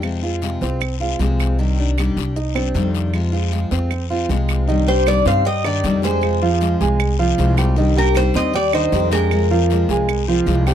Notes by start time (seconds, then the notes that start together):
Already playing: F2
0.02 C3 F3 G#3 C4 F4, long guiro, claves
0.23 G#3 C4 F4 F5
0.42 C3 F3 G#3 C4 F4, short guiro
0.61 C2 G#3 C4 F4 C5, short guiro
0.80 muted steel-string acoustic guitar stroke, long guiro, claves
1.00 G#3 C4 F4 F5
1.19 C2 C3 F3 G#3 C4 F4 G#4, short guiro
1.40 short guiro, claves
1.59 C3 D#3 G3 D4 D#4 G4, long guiro
1.78 G3 D4 G4
1.97 C3 D#3 G3 D4 G4, short guiro, claves
2.16 C2 G3 D4 G4, short guiro
2.36 D#4 D#5, muted steel-string acoustic guitar stroke, long guiro
2.55 G3 C4 D4 G4 C5, claves
2.74 F2 C3 D#3 G3 D4 G4, short guiro
2.95 short guiro
3.13 C3 F3 G#3 C4 F4, long guiro, claves
3.32 G#3 C4 F4 F5
3.52 C3 F3 G#3 C4 F4, short guiro
3.71 F2 G#3 C4 F4 C5, short guiro
3.91 muted steel-string acoustic guitar stroke, long guiro, claves
4.10 G#3 C4 F4 F5
4.29 C2 C3 F3 G#3 C4 F4 G#4, short guiro
4.49 short guiro, claves
4.67 C3 D#3 G3 D4 D#4 G4 D#5, long guiro
4.87 G3 D4 G4 C5 G5
5.06 C3 D#3 G3 D4 G4 D5, short guiro, claves
5.25 G2 C4 C5 F5 C6, short guiro
5.45 G3 G4 D#5 G5, muted steel-string acoustic guitar stroke, long guiro
5.64 D#3 G3 D4 D#4 G4 D5, claves
5.83 F2 C3 D#3 G3 D4 G4, short guiro
6.02 G3 G#3 D4 G4 G#4 C5 G#5, short guiro
6.21 C3 F3 G#3 C4 F4, long guiro, claves
6.41 F3 G#3 C4 F4 F5
6.61 C3 F3 G#3 C4 F4, short guiro
6.80 C2 G#3 G#4 G#5, short guiro
7.00 muted steel-string acoustic guitar stroke, long guiro, claves
7.19 F3 G#3 C4 F4 F5
7.38 C2 C3 F3 G#3 C4 F4, short guiro
7.57 G3 G#3 C4 F4 G4 G5, short guiro, claves
7.76 C3 D#3 G3 D4 D#4 G4 D#5, long guiro
7.96 G3 D4 G4 A#4 G5
8.14 C3 D#3 G3 D4 G4 C5, short guiro, claves
8.34 D#2 C4 C5 D#5 C6, short guiro
8.53 G3 G4 D5 G5, muted steel-string acoustic guitar stroke, long guiro
8.72 D#3 G3 D4 D#4 G4 C5 D#5, claves
8.92 F2 C3 D#3 G3 D4 G4, short guiro
9.11 G3 G#3 D4 G4 G#4 A#4 G#5, short guiro
9.31 C3 F3 G#3 C4 F4, long guiro, claves
9.51 F3 G#3 C4 F4 F5
9.70 C3 F3 G#3 C4 F4, short guiro
9.89 C2 G#3 G#4 G#5, short guiro
10.09 muted steel-string acoustic guitar stroke, long guiro, claves
10.28 F3 G#3 C4 F4 F5
10.46 C2 C3 F3 G#3 C4 F4, short guiro
10.66 G3 G#3 C4 F4 G4 G5, short guiro, claves